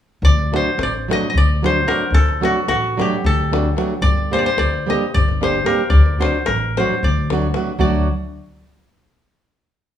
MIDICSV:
0, 0, Header, 1, 5, 480
1, 0, Start_track
1, 0, Tempo, 541516
1, 199, Time_signature, 7, 3, 24, 8
1, 4998, Tempo, 534283
1, 8890, End_track
2, 0, Start_track
2, 0, Title_t, "Koto"
2, 0, Program_c, 0, 107
2, 219, Note_on_c, 0, 74, 97
2, 495, Note_on_c, 0, 72, 77
2, 733, Note_off_c, 0, 74, 0
2, 736, Note_on_c, 0, 74, 81
2, 806, Note_off_c, 0, 74, 0
2, 998, Note_on_c, 0, 75, 87
2, 1147, Note_off_c, 0, 75, 0
2, 1150, Note_on_c, 0, 75, 69
2, 1219, Note_on_c, 0, 74, 94
2, 1272, Note_off_c, 0, 75, 0
2, 1464, Note_off_c, 0, 72, 0
2, 1468, Note_on_c, 0, 72, 96
2, 1665, Note_on_c, 0, 70, 78
2, 1900, Note_on_c, 0, 69, 92
2, 1954, Note_off_c, 0, 70, 0
2, 2168, Note_on_c, 0, 66, 73
2, 2378, Note_off_c, 0, 66, 0
2, 2382, Note_on_c, 0, 66, 88
2, 2638, Note_off_c, 0, 74, 0
2, 2669, Note_on_c, 0, 67, 72
2, 2722, Note_off_c, 0, 66, 0
2, 2889, Note_off_c, 0, 69, 0
2, 2892, Note_on_c, 0, 69, 87
2, 2988, Note_off_c, 0, 72, 0
2, 3564, Note_on_c, 0, 74, 95
2, 3837, Note_on_c, 0, 72, 79
2, 3884, Note_off_c, 0, 74, 0
2, 3888, Note_on_c, 0, 74, 60
2, 3951, Note_off_c, 0, 72, 0
2, 3954, Note_on_c, 0, 72, 76
2, 4065, Note_off_c, 0, 74, 0
2, 4069, Note_on_c, 0, 74, 79
2, 4345, Note_on_c, 0, 75, 69
2, 4398, Note_off_c, 0, 74, 0
2, 4477, Note_off_c, 0, 67, 0
2, 4560, Note_on_c, 0, 74, 93
2, 4579, Note_off_c, 0, 69, 0
2, 4613, Note_off_c, 0, 75, 0
2, 4816, Note_off_c, 0, 72, 0
2, 4819, Note_on_c, 0, 72, 78
2, 5018, Note_on_c, 0, 70, 66
2, 5228, Note_off_c, 0, 74, 0
2, 5232, Note_on_c, 0, 74, 81
2, 5504, Note_off_c, 0, 72, 0
2, 5508, Note_on_c, 0, 72, 66
2, 5524, Note_off_c, 0, 74, 0
2, 5734, Note_off_c, 0, 70, 0
2, 5737, Note_on_c, 0, 70, 78
2, 5744, Note_off_c, 0, 72, 0
2, 6020, Note_on_c, 0, 72, 68
2, 6027, Note_off_c, 0, 70, 0
2, 6250, Note_off_c, 0, 72, 0
2, 6259, Note_on_c, 0, 74, 79
2, 6897, Note_off_c, 0, 74, 0
2, 6946, Note_on_c, 0, 74, 69
2, 7194, Note_off_c, 0, 74, 0
2, 8890, End_track
3, 0, Start_track
3, 0, Title_t, "Nylon-string guitar"
3, 0, Program_c, 1, 24
3, 461, Note_on_c, 1, 54, 52
3, 469, Note_on_c, 1, 57, 51
3, 474, Note_on_c, 1, 62, 54
3, 482, Note_on_c, 1, 66, 60
3, 613, Note_off_c, 1, 54, 0
3, 617, Note_off_c, 1, 57, 0
3, 620, Note_off_c, 1, 62, 0
3, 624, Note_off_c, 1, 66, 0
3, 961, Note_on_c, 1, 54, 65
3, 971, Note_on_c, 1, 57, 51
3, 978, Note_on_c, 1, 66, 70
3, 980, Note_on_c, 1, 62, 58
3, 1113, Note_off_c, 1, 54, 0
3, 1118, Note_off_c, 1, 57, 0
3, 1121, Note_off_c, 1, 66, 0
3, 1123, Note_off_c, 1, 62, 0
3, 1441, Note_on_c, 1, 54, 55
3, 1446, Note_on_c, 1, 57, 49
3, 1456, Note_on_c, 1, 62, 47
3, 1460, Note_on_c, 1, 66, 59
3, 1586, Note_off_c, 1, 54, 0
3, 1588, Note_off_c, 1, 57, 0
3, 1594, Note_off_c, 1, 62, 0
3, 1594, Note_off_c, 1, 66, 0
3, 1651, Note_on_c, 1, 54, 56
3, 1658, Note_on_c, 1, 57, 46
3, 1666, Note_on_c, 1, 62, 46
3, 1669, Note_on_c, 1, 66, 48
3, 1798, Note_off_c, 1, 54, 0
3, 1802, Note_off_c, 1, 57, 0
3, 1806, Note_off_c, 1, 62, 0
3, 1806, Note_off_c, 1, 66, 0
3, 2136, Note_on_c, 1, 54, 52
3, 2142, Note_on_c, 1, 57, 49
3, 2146, Note_on_c, 1, 62, 44
3, 2149, Note_on_c, 1, 66, 67
3, 2292, Note_off_c, 1, 54, 0
3, 2296, Note_off_c, 1, 57, 0
3, 2296, Note_off_c, 1, 62, 0
3, 2299, Note_off_c, 1, 66, 0
3, 2636, Note_on_c, 1, 54, 62
3, 2638, Note_on_c, 1, 57, 55
3, 2644, Note_on_c, 1, 62, 53
3, 2649, Note_on_c, 1, 66, 76
3, 2792, Note_off_c, 1, 57, 0
3, 2793, Note_off_c, 1, 54, 0
3, 2796, Note_off_c, 1, 62, 0
3, 2799, Note_off_c, 1, 66, 0
3, 3111, Note_on_c, 1, 54, 57
3, 3121, Note_on_c, 1, 57, 44
3, 3125, Note_on_c, 1, 62, 51
3, 3130, Note_on_c, 1, 66, 58
3, 3262, Note_off_c, 1, 54, 0
3, 3267, Note_off_c, 1, 57, 0
3, 3268, Note_off_c, 1, 62, 0
3, 3271, Note_off_c, 1, 66, 0
3, 3337, Note_on_c, 1, 54, 56
3, 3340, Note_on_c, 1, 57, 49
3, 3353, Note_on_c, 1, 62, 54
3, 3356, Note_on_c, 1, 66, 57
3, 3482, Note_off_c, 1, 54, 0
3, 3483, Note_off_c, 1, 57, 0
3, 3490, Note_off_c, 1, 62, 0
3, 3491, Note_off_c, 1, 66, 0
3, 3824, Note_on_c, 1, 55, 52
3, 3826, Note_on_c, 1, 58, 49
3, 3833, Note_on_c, 1, 62, 46
3, 3839, Note_on_c, 1, 67, 60
3, 3976, Note_off_c, 1, 55, 0
3, 3977, Note_off_c, 1, 58, 0
3, 3981, Note_off_c, 1, 62, 0
3, 3983, Note_off_c, 1, 67, 0
3, 4312, Note_on_c, 1, 55, 60
3, 4321, Note_on_c, 1, 58, 57
3, 4327, Note_on_c, 1, 62, 55
3, 4332, Note_on_c, 1, 67, 62
3, 4469, Note_off_c, 1, 55, 0
3, 4474, Note_off_c, 1, 58, 0
3, 4477, Note_off_c, 1, 62, 0
3, 4479, Note_off_c, 1, 67, 0
3, 4794, Note_on_c, 1, 55, 49
3, 4798, Note_on_c, 1, 58, 47
3, 4800, Note_on_c, 1, 62, 45
3, 4810, Note_on_c, 1, 67, 64
3, 4942, Note_off_c, 1, 55, 0
3, 4943, Note_off_c, 1, 58, 0
3, 4943, Note_off_c, 1, 62, 0
3, 4949, Note_off_c, 1, 67, 0
3, 5004, Note_on_c, 1, 55, 51
3, 5013, Note_on_c, 1, 58, 48
3, 5018, Note_on_c, 1, 62, 44
3, 5027, Note_on_c, 1, 67, 54
3, 5154, Note_off_c, 1, 55, 0
3, 5159, Note_off_c, 1, 58, 0
3, 5160, Note_off_c, 1, 62, 0
3, 5166, Note_off_c, 1, 67, 0
3, 5490, Note_on_c, 1, 54, 50
3, 5498, Note_on_c, 1, 57, 51
3, 5504, Note_on_c, 1, 62, 51
3, 5507, Note_on_c, 1, 66, 60
3, 5650, Note_off_c, 1, 54, 0
3, 5654, Note_off_c, 1, 57, 0
3, 5655, Note_off_c, 1, 62, 0
3, 5658, Note_off_c, 1, 66, 0
3, 6019, Note_on_c, 1, 54, 64
3, 6023, Note_on_c, 1, 57, 55
3, 6034, Note_on_c, 1, 62, 50
3, 6038, Note_on_c, 1, 66, 66
3, 6165, Note_off_c, 1, 54, 0
3, 6167, Note_off_c, 1, 57, 0
3, 6173, Note_off_c, 1, 62, 0
3, 6174, Note_off_c, 1, 66, 0
3, 6496, Note_on_c, 1, 54, 54
3, 6509, Note_on_c, 1, 57, 46
3, 6514, Note_on_c, 1, 62, 48
3, 6517, Note_on_c, 1, 66, 60
3, 6636, Note_off_c, 1, 54, 0
3, 6642, Note_off_c, 1, 57, 0
3, 6645, Note_off_c, 1, 62, 0
3, 6645, Note_off_c, 1, 66, 0
3, 6706, Note_on_c, 1, 54, 53
3, 6711, Note_on_c, 1, 57, 38
3, 6724, Note_on_c, 1, 62, 41
3, 6729, Note_on_c, 1, 66, 46
3, 6848, Note_off_c, 1, 54, 0
3, 6850, Note_off_c, 1, 57, 0
3, 6857, Note_off_c, 1, 62, 0
3, 6859, Note_off_c, 1, 66, 0
3, 6929, Note_on_c, 1, 54, 66
3, 6935, Note_on_c, 1, 62, 62
3, 6936, Note_on_c, 1, 57, 54
3, 6939, Note_on_c, 1, 66, 74
3, 7187, Note_off_c, 1, 54, 0
3, 7187, Note_off_c, 1, 66, 0
3, 7188, Note_off_c, 1, 57, 0
3, 7189, Note_off_c, 1, 62, 0
3, 8890, End_track
4, 0, Start_track
4, 0, Title_t, "Upright bass"
4, 0, Program_c, 2, 32
4, 195, Note_on_c, 2, 38, 77
4, 496, Note_off_c, 2, 38, 0
4, 691, Note_on_c, 2, 33, 66
4, 994, Note_off_c, 2, 33, 0
4, 1187, Note_on_c, 2, 38, 81
4, 1600, Note_off_c, 2, 38, 0
4, 1865, Note_on_c, 2, 38, 67
4, 2170, Note_off_c, 2, 38, 0
4, 2376, Note_on_c, 2, 33, 70
4, 2678, Note_off_c, 2, 33, 0
4, 2875, Note_on_c, 2, 38, 87
4, 3286, Note_off_c, 2, 38, 0
4, 3559, Note_on_c, 2, 31, 78
4, 3860, Note_off_c, 2, 31, 0
4, 4055, Note_on_c, 2, 38, 67
4, 4356, Note_off_c, 2, 38, 0
4, 4565, Note_on_c, 2, 31, 77
4, 4970, Note_off_c, 2, 31, 0
4, 5250, Note_on_c, 2, 38, 75
4, 5548, Note_off_c, 2, 38, 0
4, 5755, Note_on_c, 2, 33, 72
4, 6052, Note_off_c, 2, 33, 0
4, 6247, Note_on_c, 2, 38, 81
4, 6655, Note_off_c, 2, 38, 0
4, 6927, Note_on_c, 2, 38, 72
4, 7184, Note_off_c, 2, 38, 0
4, 8890, End_track
5, 0, Start_track
5, 0, Title_t, "Davul"
5, 201, Note_on_c, 9, 43, 80
5, 290, Note_off_c, 9, 43, 0
5, 345, Note_on_c, 9, 37, 23
5, 434, Note_off_c, 9, 37, 0
5, 475, Note_on_c, 9, 37, 53
5, 564, Note_off_c, 9, 37, 0
5, 593, Note_on_c, 9, 37, 21
5, 681, Note_off_c, 9, 37, 0
5, 699, Note_on_c, 9, 37, 60
5, 788, Note_off_c, 9, 37, 0
5, 835, Note_on_c, 9, 37, 22
5, 924, Note_off_c, 9, 37, 0
5, 986, Note_on_c, 9, 37, 63
5, 1075, Note_off_c, 9, 37, 0
5, 1200, Note_on_c, 9, 43, 71
5, 1289, Note_off_c, 9, 43, 0
5, 1456, Note_on_c, 9, 37, 54
5, 1545, Note_off_c, 9, 37, 0
5, 1672, Note_on_c, 9, 37, 58
5, 1760, Note_off_c, 9, 37, 0
5, 1881, Note_on_c, 9, 43, 78
5, 1970, Note_off_c, 9, 43, 0
5, 2025, Note_on_c, 9, 37, 26
5, 2114, Note_off_c, 9, 37, 0
5, 2158, Note_on_c, 9, 37, 57
5, 2247, Note_off_c, 9, 37, 0
5, 2269, Note_on_c, 9, 37, 20
5, 2358, Note_off_c, 9, 37, 0
5, 2379, Note_on_c, 9, 37, 66
5, 2468, Note_off_c, 9, 37, 0
5, 2521, Note_on_c, 9, 37, 23
5, 2609, Note_off_c, 9, 37, 0
5, 2655, Note_on_c, 9, 37, 62
5, 2744, Note_off_c, 9, 37, 0
5, 2875, Note_on_c, 9, 43, 76
5, 2964, Note_off_c, 9, 43, 0
5, 3009, Note_on_c, 9, 37, 24
5, 3098, Note_off_c, 9, 37, 0
5, 3131, Note_on_c, 9, 37, 65
5, 3219, Note_off_c, 9, 37, 0
5, 3351, Note_on_c, 9, 37, 56
5, 3439, Note_off_c, 9, 37, 0
5, 3564, Note_on_c, 9, 43, 74
5, 3653, Note_off_c, 9, 43, 0
5, 3700, Note_on_c, 9, 37, 22
5, 3788, Note_off_c, 9, 37, 0
5, 3849, Note_on_c, 9, 37, 56
5, 3938, Note_off_c, 9, 37, 0
5, 4060, Note_on_c, 9, 37, 65
5, 4149, Note_off_c, 9, 37, 0
5, 4198, Note_on_c, 9, 37, 22
5, 4286, Note_off_c, 9, 37, 0
5, 4342, Note_on_c, 9, 37, 63
5, 4431, Note_off_c, 9, 37, 0
5, 4558, Note_on_c, 9, 43, 73
5, 4647, Note_off_c, 9, 43, 0
5, 4684, Note_on_c, 9, 37, 25
5, 4773, Note_off_c, 9, 37, 0
5, 4813, Note_on_c, 9, 37, 60
5, 4901, Note_off_c, 9, 37, 0
5, 5020, Note_on_c, 9, 37, 66
5, 5110, Note_off_c, 9, 37, 0
5, 5231, Note_on_c, 9, 43, 80
5, 5321, Note_off_c, 9, 43, 0
5, 5375, Note_on_c, 9, 37, 24
5, 5465, Note_off_c, 9, 37, 0
5, 5523, Note_on_c, 9, 37, 66
5, 5613, Note_off_c, 9, 37, 0
5, 5636, Note_on_c, 9, 37, 18
5, 5726, Note_off_c, 9, 37, 0
5, 5736, Note_on_c, 9, 37, 64
5, 5826, Note_off_c, 9, 37, 0
5, 6017, Note_on_c, 9, 37, 59
5, 6107, Note_off_c, 9, 37, 0
5, 6141, Note_on_c, 9, 37, 23
5, 6231, Note_off_c, 9, 37, 0
5, 6247, Note_on_c, 9, 43, 72
5, 6336, Note_off_c, 9, 43, 0
5, 6493, Note_on_c, 9, 37, 62
5, 6583, Note_off_c, 9, 37, 0
5, 6598, Note_on_c, 9, 37, 21
5, 6688, Note_off_c, 9, 37, 0
5, 6708, Note_on_c, 9, 37, 54
5, 6797, Note_off_c, 9, 37, 0
5, 6819, Note_on_c, 9, 37, 18
5, 6909, Note_off_c, 9, 37, 0
5, 6929, Note_on_c, 9, 43, 65
5, 7019, Note_off_c, 9, 43, 0
5, 8890, End_track
0, 0, End_of_file